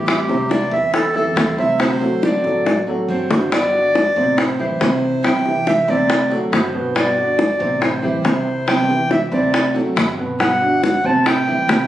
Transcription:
Already playing: A2 E3 E4 G4
0.06 E3 G3 C4 E4, high bongo
0.28 C3 G3 C4 E4 C5, high bongo
0.49 E3 G3 C4 E4 D5, high bongo
0.71 E2 E3 E4 G4 E5
0.93 A4, muted nylon-string guitar stroke, high bongo
1.14 E3 G3 C4 E4 G4 A4, high bongo
1.36 D2 E3 G3 C4 E4, high bongo, low bongo
1.57 C3 G3 C4 E4 C5 E5, high bongo
1.79 C3 D3 A3 C4 F#4 C5, high bongo
2.00 F#3 A3 C4 F#4 A4, high bongo
2.22 D3 A3 C4 F#4 D5, high bongo
2.44 A1 F#3 F#4 A4, high bongo
2.65 muted nylon-string guitar stroke, high bongo
2.87 F#3 A3 C4 F#4 A4
3.08 G1 D3 A3 C4 F#4 C5
3.30 D3 A3 C4 D4 F#4, low bongo
3.52 G3 B3 F#4 D5, high bongo
3.74 D3 D4 F#4
3.95 high bongo
4.16 A1 C3 B3 C4 F#4 C5
4.37 C5, muted nylon-string guitar stroke, high bongo
4.59 E3 G3 C4 E4 G4 C5
4.81 C2 C3 E3 G3 C4 E4 C5, high bongo, low bongo
5.23 C3 E3 G3 B3 C4 E4 C5 G5, high bongo
5.46 E3 E4 G4, high bongo
5.67 E5, high bongo
5.88 D2 C3 E3 G3 B3 C4 E4 C5 D5, high bongo
6.10 muted nylon-string guitar stroke, high bongo
6.30 F#3 A3 C4 F#4 A4, high bongo
6.52 G1 D3 A3 C4 F#4 C5, high bongo, low bongo
6.74 B2 B4
6.95 G3 B3 F#4 D5, high bongo
7.17 D3 D4 F#4
7.39 high bongo
7.59 A1 C3 B3 C4 F#4 C5
7.81 C5, muted nylon-string guitar stroke, high bongo
8.02 E3 G3 C4 E4 G4 C5
8.24 C2 C3 E3 G3 C4 E4 C5, high bongo, low bongo
8.67 C3 E3 G3 B3 C4 E4 C5 G5, high bongo
8.89 E3 E4 G4, high bongo
9.11 E5, high bongo
9.31 D2 C3 E3 G3 B3 C4 E4 C5 D5, high bongo
9.54 muted nylon-string guitar stroke, high bongo
9.74 F#3 A3 C4 F#4 A4, high bongo
9.96 G1 D3 A3 C4 F#4, high bongo, low bongo
10.18 B2 B4
10.39 G3 B3 F#4 F#5, high bongo
10.61 D3 D4 F#4
10.83 F#5, high bongo
11.04 A1 C3 B3 C4 F#4 C5 A5
11.26 G5, muted nylon-string guitar stroke, high bongo
11.47 E3 G3 C4 E4 G4
11.69 C2 C3 E3 G3 C4 E4 C5, high bongo, low bongo

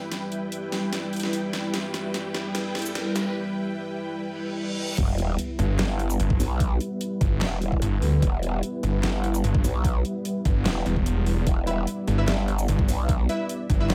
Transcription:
Already playing: G3 E4 B4 G5, riser
0.12 snare, closed hi-hat
0.32 closed hi-hat
0.52 closed hi-hat
0.72 snare, closed hi-hat
0.93 snare, closed hi-hat
1.13 closed hi-hat
1.16 closed hi-hat
1.20 snare, closed hi-hat
1.33 closed hi-hat
1.53 snare, closed hi-hat
1.74 snare, closed hi-hat
1.94 snare, closed hi-hat
2.14 snare, closed hi-hat
2.35 snare, closed hi-hat
2.55 snare, closed hi-hat
2.75 snare, closed hi-hat
2.79 closed hi-hat
2.82 closed hi-hat, shaker
2.95 snare, closed hi-hat
3.16 snare, closed hi-hat, shaker
4.17 reverse cymbal
4.98 E1 G3 B3 E4 B4, kick, closed hi-hat, crash, sub drop
5.18 closed hi-hat
5.39 closed hi-hat
5.59 G1, closed hi-hat
5.79 G1, snare, clap, closed hi-hat
5.99 closed hi-hat
6.10 shaker
6.20 G1, closed hi-hat
6.30 kick
6.40 B1, open hi-hat, shaker
6.60 kick, closed hi-hat
6.80 closed hi-hat
7.01 closed hi-hat
7.21 G1, kick, closed hi-hat
7.41 E1, snare, clap, closed hi-hat
7.62 closed hi-hat
7.72 kick
7.82 G1, closed hi-hat
8.02 D2, open hi-hat
8.22 E1, kick, closed hi-hat
8.43 closed hi-hat
8.63 closed hi-hat
8.83 G1, closed hi-hat
9.03 G1, snare, clap, closed hi-hat
9.24 closed hi-hat
9.34 shaker
9.44 G1, closed hi-hat
9.55 kick
9.64 B1, open hi-hat, shaker
9.85 kick, closed hi-hat
10.05 closed hi-hat
10.25 closed hi-hat
10.45 G1, kick, closed hi-hat
10.66 E1, snare, clap, closed hi-hat
10.86 E1, closed hi-hat
10.96 kick
11.06 closed hi-hat
11.26 open hi-hat
11.47 E1 D5, kick, closed hi-hat
11.67 E4 B4 E5, closed hi-hat
11.87 closed hi-hat
12.07 G1, closed hi-hat
12.18 E4 B4 E5
12.28 G1, snare, clap, closed hi-hat
12.48 closed hi-hat
12.59 shaker
12.68 G1, closed hi-hat
12.79 kick
12.89 B1, open hi-hat, shaker
13.09 kick, closed hi-hat
13.29 E4 B4 E5, closed hi-hat
13.49 closed hi-hat
13.70 G1, kick, closed hi-hat
13.80 E4 B4 E5
13.90 E1, snare, clap, closed hi-hat

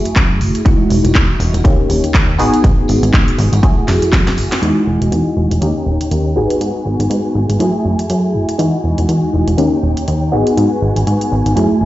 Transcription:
Already playing: A3 E4 F#4 G#4
0.05 F#2, closed hi-hat, tambourine
0.16 F#2, kick, clap, closed hi-hat
0.41 F#1, open hi-hat, tambourine
0.55 closed hi-hat, tambourine
0.65 E2 G#3 D#4 E4 F#4, kick, closed hi-hat, tambourine
0.90 E1, open hi-hat, tambourine
1.04 E1, closed hi-hat, tambourine
1.15 E2, kick, clap, closed hi-hat
1.40 E1, open hi-hat, tambourine
1.54 E1, closed hi-hat, tambourine
1.64 D#2 A#3 C#4 D#4 G4, kick, closed hi-hat, tambourine
1.89 D#1, open hi-hat, tambourine
2.03 D#2, closed hi-hat, tambourine
2.14 D#2, kick, clap, closed hi-hat
2.38 G#1 B3 D#4 F#4 G#4, open hi-hat, tambourine
2.53 closed hi-hat, tambourine
2.64 G#2, kick, closed hi-hat
2.88 G#1, open hi-hat, tambourine
3.03 G#1, closed hi-hat, tambourine
3.13 G#2, kick, clap, closed hi-hat, tambourine
3.28 closed hi-hat
3.38 G#1, open hi-hat, tambourine
3.52 G#1, closed hi-hat, tambourine
3.63 F#2 A3 E4 F#4 G#4, kick, closed hi-hat
3.88 F#1, snare, open hi-hat, tambourine
4.02 F#2, closed hi-hat, tambourine
4.13 F#2, kick, snare, clap, closed hi-hat
4.27 snare, closed hi-hat
4.37 F#1, open hi-hat, tambourine
4.51 snare, closed hi-hat, tambourine
4.62 E2 G#3 D#4 E4 F#4 D#5 G#5, closed hi-hat
4.87 E1
5.01 E1, closed hi-hat
5.12 E2, closed hi-hat
5.37 E1
5.51 E1, closed hi-hat
5.61 D#2 A#3 C#4 D#4 G4 C#5 G5, closed hi-hat
5.86 D#1
6.00 D#2, closed hi-hat
6.11 D#2, closed hi-hat
6.35 G#1 B3 D#4 F#4 G#4 B4 G#5
6.50 closed hi-hat
6.61 G#2, closed hi-hat
6.85 G#1
6.99 G#1, closed hi-hat
7.10 G#2, closed hi-hat
7.35 G#1
7.49 G#1, closed hi-hat
7.59 F#2 A3 E4 F#4 G#4, closed hi-hat
7.85 F#1
7.99 F#2, closed hi-hat
8.10 F#2, closed hi-hat
8.34 F#1
8.49 closed hi-hat
8.58 E2 G#3 D#4 E4 F#4 D#5, closed hi-hat
8.84 E1
8.98 E1, closed hi-hat
9.09 E2, closed hi-hat
9.34 E1
9.48 E1, closed hi-hat
9.57 D#2 A#3 C#4 D#4 G4 C#5 G5, closed hi-hat
9.83 D#1
9.97 D#2, closed hi-hat
10.08 D#2, closed hi-hat
10.32 G#1 B3 D#4 F#4 G#4 B4 G#5
10.47 closed hi-hat
10.57 G#2, closed hi-hat
10.82 G#1
10.96 G#1, closed hi-hat
11.07 G#2, closed hi-hat
11.21 closed hi-hat
11.32 G#1
11.46 G#1, closed hi-hat
11.56 F#2 A3 E4 F#4 G#4, closed hi-hat
11.81 F#1

